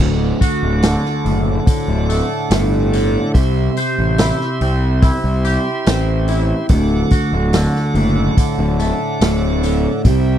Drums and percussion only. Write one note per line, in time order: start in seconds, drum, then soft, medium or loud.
0.00 crash medium
0.41 kick medium
0.41 open hi-hat medium
0.41 tambourine medium
0.82 snare loud
0.82 open hi-hat medium
0.82 tambourine loud
1.05 snare soft
1.26 open hi-hat soft
1.67 kick loud
1.67 open hi-hat medium
1.67 tambourine medium
2.10 open hi-hat medium
2.10 tambourine medium
2.51 snare loud
2.51 open hi-hat medium
2.51 tambourine loud
2.93 open hi-hat medium
2.93 tambourine medium
3.35 kick loud
3.35 open hi-hat medium
3.77 open hi-hat medium
3.77 tambourine medium
4.18 snare loud
4.18 open hi-hat medium
4.18 tambourine loud
4.41 snare soft
4.61 open hi-hat medium
5.02 kick loud
5.02 open hi-hat medium
5.02 tambourine medium
5.45 open hi-hat medium
5.45 tambourine medium
5.86 snare loud
5.86 open hi-hat medium
5.86 tambourine medium
6.28 open hi-hat soft
6.28 tambourine medium
6.69 kick loud
6.69 open hi-hat medium
7.11 kick medium
7.11 open hi-hat medium
7.11 tambourine medium
7.53 snare loud
7.53 open hi-hat medium
7.53 tambourine loud
7.75 snare soft
7.95 open hi-hat soft
8.37 kick loud
8.37 open hi-hat medium
8.37 tambourine medium
8.79 open hi-hat medium
8.79 tambourine medium
9.21 snare loud
9.21 open hi-hat medium
9.21 tambourine medium
9.63 open hi-hat medium
9.63 tambourine medium
10.05 kick loud
10.05 open hi-hat medium
10.05 tambourine soft